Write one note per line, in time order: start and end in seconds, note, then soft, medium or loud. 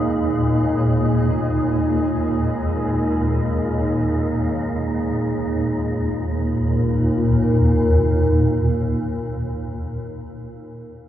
0.00 5.81 D#2 medium
0.00 5.81 A#2 medium
0.00 5.83 A#3 medium
0.00 5.84 D#4 medium
0.00 5.82 G#4 medium
0.00 5.84 D#5 medium
5.82 9.34 D#2 medium
5.82 9.35 A#2 medium
5.82 9.36 A#3 medium
6.00 9.52 D#4 medium
6.15 9.67 A#4 medium